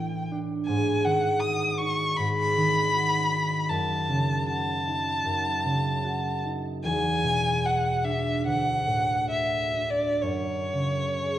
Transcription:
Already playing: A2 E3 B3 D4 E4 G5
0.31 D4
0.66 G#2 G#5
1.05 D#3 F#5
1.40 F#4 D#6
1.78 D#4 C#6
2.17 G#2 B5
2.57 D#3
2.94 F#4
3.31 D#4
3.69 F#2 A5
4.09 C#3
4.48 F#4 A5
4.87 D#4
5.25 F#2
5.65 C#3
6.04 F#4
6.45 D#4
6.84 E2 G#5
7.23 B2
7.64 F#4 F#5
8.04 D4 E5
8.45 D2 F#5
8.86 A2
9.29 F#4 E5
9.74 D4
9.90 D5
10.22 F#2 C#5
10.73 C#3
11.22 G#4

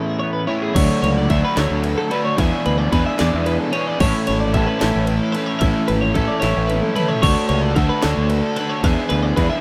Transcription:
Already playing: E2 A2 E3 A3 B3 C#4 E4 G#4
0.06 G#4
0.19 B3 C#5
0.33 B4
0.47 A2 E3 A3 C#4 E4 C#5
0.62 G#4
0.74 D2 D3 F#3 A3 D4 F#4 C#5, kick, crash, ride
1.02 C#2 C#5, ride
1.18 D5
1.29 D2 F#3 A3 D4 F#4 E5, kick, ride
1.45 B4
1.56 D2 D3 F#3 A3 D4 F#4 C#5, snare, ride
1.71 D2
1.84 B4, ride
1.98 A4
2.10 A3 D4 F#4 B4, ride
2.25 C#5
2.37 E2 E3 B3 D4 G#4 E5, kick, ride
2.66 D2 B4, ride
2.78 D5
2.91 E2 E3 B3 D4 G#4 B4, kick, ride
3.06 E5
3.18 E2 E3 B3 D4 G#4 D5, snare, ride
3.34 E2
3.46 B4, ride
3.59 A4
3.72 B3 D4 G#4 C#5, ride
3.87 D5
3.99 A1 A2 E3 A3 C#4 E4 A4 C#5, kick, crash
4.27 G#1 C#5, ride
4.40 D5
4.53 A1 A3 C#4 E4 A4 E5, kick, ride
4.67 B4
4.79 A1 A3 C#4 E4 A4 C#5, snare, ride
4.84 A2 E3
4.96 A1
5.06 B4, ride
5.20 A4
5.32 A4 B4, ride
5.36 A3 C#4 E4
5.46 C#5
5.59 A1 A2 E5, kick, ride
5.63 E3 A3 C#4 E4 A4
5.88 G#1 B4, ride
6.01 C#5
6.14 A1 A3 C#4 E4 A4, kick, ride
6.28 D5
6.40 A1 C#4 E4 A4 C#5, snare, ride
6.45 A2 E3 A3
6.57 A1
6.67 B4, high tom, ride
6.81 A4, mid tom
6.95 A3 C#4 E4 A4 B4, mid tom, ride
7.08 C#5, floor tom
7.22 D2 D3 A3 D4 F#4 A4 C#5, kick, crash
7.49 C#2 C#5, ride
7.62 D5
7.75 D2 A3 D4 F#4 A4 E5, kick, ride
7.89 B4
8.02 D2 A3 D4 F#4 A4 C#5, snare, ride
8.06 D3
8.17 D2
8.30 B4, ride
8.43 A4
8.56 D4 F#4 A4 B4, ride
8.69 C#5
8.83 E2 E3 B3 D4 G#4 E5, kick, ride
9.09 D2 B4, ride
9.23 D5
9.36 E2 E3 B3 D4 G#4 B4, kick, ride
9.50 E5

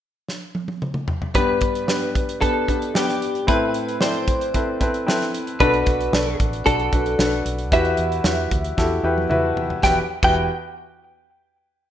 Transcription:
0.28 snare
0.55 high tom
0.68 high tom
0.82 mid tom
0.94 mid tom
1.08 floor tom
1.22 floor tom
1.34 G2 B3 D4 G4 B4, kick, closed hi-hat
1.61 kick, closed hi-hat
1.75 closed hi-hat
1.87 B3 D4 G4 B4, snare
2.02 closed hi-hat
2.15 kick, closed hi-hat
2.29 closed hi-hat
2.41 B3 D4 G4 A4 B4, kick, closed hi-hat
2.67 B3 D4 G4 B4, kick, closed hi-hat
2.82 closed hi-hat
2.94 B3 D4 G4 B4, snare
3.09 snare
3.22 closed hi-hat
3.35 closed hi-hat
3.47 A2 C4 E4 A4 B4, kick, closed hi-hat
3.74 closed hi-hat
3.89 closed hi-hat
4.01 C4 E4 A4 C5 D5, snare
4.14 closed hi-hat
4.28 kick, closed hi-hat
4.41 closed hi-hat
4.54 C4 E4 A4 B4, kick, closed hi-hat
4.80 C4 E4 A4 B4, kick, closed hi-hat
4.94 closed hi-hat
5.06 C4 E4 A4 B4, snare
5.21 snare, closed hi-hat
5.34 closed hi-hat
5.47 closed hi-hat
5.60 B1 B2 D4 F#4 A4 B4, kick, closed hi-hat
5.74 closed hi-hat
5.86 B1, kick, closed hi-hat
6.01 closed hi-hat
6.12 B1 D4 F#4 A4 D5, snare
6.40 A1, kick, closed hi-hat
6.53 closed hi-hat
6.65 B1 D4 F#4 A4 D5, kick, closed hi-hat
6.79 closed hi-hat
6.92 B1 D4 F#4 A4 B4, kick, closed hi-hat
7.06 closed hi-hat
7.18 B1 D4 F#4 A4 B4, snare
7.33 closed hi-hat
7.45 B1, closed hi-hat
7.58 closed hi-hat
7.72 E2 E3 E4 F#4 G4 B4 E5, kick, closed hi-hat
7.85 closed hi-hat
7.97 E2, closed hi-hat
8.12 closed hi-hat
8.24 E2 E4 F#4 G4 B4, snare
8.51 D2, kick, closed hi-hat
8.64 closed hi-hat
8.77 E2 E4 F#4 G4 A4, kick, snare
9.03 E2 E4 F#4 G4 B4 G5
9.18 high tom
9.29 E2 E4 F#4 G4 B4 E5, mid tom
9.56 E2, floor tom
9.70 floor tom
9.83 E1 E2 E4 F#4 G4 B4 G5, kick, snare
10.23 E1 E2 E4 F#4 G4 B4 G5, kick, crash

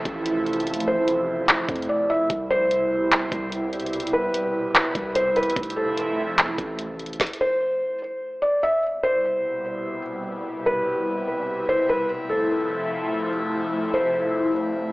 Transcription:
Already playing: C3 F3 A3 E4 A4
0.05 A1, kick, closed hi-hat
0.26 closed hi-hat
0.46 closed hi-hat
0.53 closed hi-hat
0.60 closed hi-hat
0.67 closed hi-hat
0.74 closed hi-hat
0.80 closed hi-hat
0.88 C5
1.08 closed hi-hat
1.48 clap, closed hi-hat
1.69 F2, kick, closed hi-hat
1.76 closed hi-hat
1.82 closed hi-hat
1.89 D5
2.10 E5
2.30 C2 B2 G3, kick, closed hi-hat
2.51 C5
2.71 closed hi-hat
3.12 clap, closed hi-hat
3.32 C2, kick, closed hi-hat
3.52 closed hi-hat
3.73 closed hi-hat
3.80 closed hi-hat
3.86 closed hi-hat
3.93 closed hi-hat
4.00 closed hi-hat
4.07 closed hi-hat
4.13 B4
4.34 closed hi-hat
4.75 clap, closed hi-hat
4.95 C2, kick, closed hi-hat
5.15 C5, closed hi-hat
5.36 B4, closed hi-hat
5.43 closed hi-hat
5.50 closed hi-hat
5.56 F1 C3 F3 A3 E4, kick, closed hi-hat
5.63 closed hi-hat
5.70 closed hi-hat
5.76 A4
5.97 closed hi-hat
6.38 F2, clap, closed hi-hat
6.48 F1
6.58 A1, kick, closed hi-hat
6.79 closed hi-hat
6.99 closed hi-hat
7.06 closed hi-hat
7.13 closed hi-hat
7.20 kick, snare, closed hi-hat
7.27 closed hi-hat
7.33 closed hi-hat
7.41 C5
8.42 D5
8.63 E5
8.83 B2 C3 G3 E4
9.03 C5
10.66 B4
11.69 C5
11.89 B4
12.10 F3 A3
12.29 A4
13.94 C5

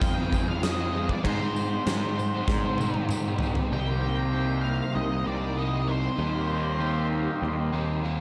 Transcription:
Already playing: D#3 G#3 C4 F4 G#4 F5 D#6
0.00 F2 D#3 G5, kick, tambourine, crash
0.17 D#3 G#3 C4 F4 G#4
0.31 D#3 F3 G#3 C4 F4 G#4, kick, tambourine
0.48 F5
0.63 F2 C3 D#3 F3 G#3 C4 F4 G#4 D#5, snare, tambourine, crash
0.78 D#3 G#3 C4 F4 G#4
0.94 D#3 F3 G#3 C4 F4 G#4
1.09 G#3 C4 F4 D5, kick
1.23 G#2 D#3 G#3 C4 D#4 C5 G5, kick, tambourine, crash
1.27 G4 C6
1.41 G#3 C4 D#4
1.55 G#3 C4 D#4 G4, tambourine
1.70 C4 D#4 G4
1.86 G#2 D#3 G#3 C4 D#4 G4, snare, tambourine, crash
2.01 C4 D#4 G4
2.06 G#3
2.18 C4, muted overdriven electric guitar stroke, tambourine
2.33 G#3 C4 D#4 G4
2.48 G#2 D#3, kick, snare, tambourine
2.63 C4 D#4 G4
2.67 G#3
2.78 D#3 G#3 C4 D#4 G4, high tom, tambourine
2.94 high tom
3.09 G#2 D#3 G#3 C4, mid tom, tambourine
3.13 D#4 G4
3.25 G#3 C4 D#4 G4
3.39 D#3 G#3, floor tom, tambourine
3.43 C4 D#4 G4
3.55 G#3 C4 D#4, floor tom
3.70 C2 C3 D#3 G3 A#3 C4 D#4 A#4 G5 C6
3.76 G4
4.02 A#3 G5
4.32 C3 D#3 G3 C4 D#4
4.62 A#3 F5
4.95 C2 G4 D#5
5.26 C2 G3 C4 D#4 D5
5.56 C3 G3 C4 D#4 G4 D#5
5.87 G3 C4 D#4 C5
6.16 D#2 D#3 G3 A#3 C4 D#4 G4 C6
6.21 G4
6.50 A#3
6.79 D#3 G3 A#3 D#4
7.12 A#3
7.42 D#2 G4
7.72 D#2 G3 A#3 C4 D#4
8.03 D#3 G3 A#3 D#4 G4

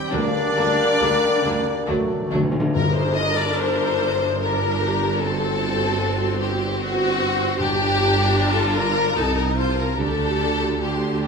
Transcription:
Already playing: G3 C4 G4 G5
0.11 D2 D3 G3 A#3 D4 A#4 D5
0.57 D2 D3 G3 A#3 D4
1.00 D2 D3 G3 A#3 D4
1.45 D2 D3 G3 A#3 D4
1.87 D2 D3 F#3 A3 D4
1.96 D3
2.03 D3
2.11 D3
2.20 D3
2.28 D3 A3
2.32 D2 D3 F#3 D4
2.43 D3
2.52 D3
2.60 D3
2.75 G1 G2 D4 A#4 A#5, tam-tam
2.96 C5
3.17 D#5
3.38 D5
3.60 C5
4.42 D4 A#4 A#5
4.83 G4
5.22 C4 F#4 A4 C6
6.42 G4
6.81 C4 F#4 C6
7.59 G1 G2 D4 G4 A#5
8.36 F4
8.56 A4
8.75 A#4
9.16 C2 C3 D#4 A4 A5
9.38 A#4
9.57 F4 C5
9.79 A#4
9.97 D2 D3 D4 G4 A4 A#5
10.83 D4 G4 C6

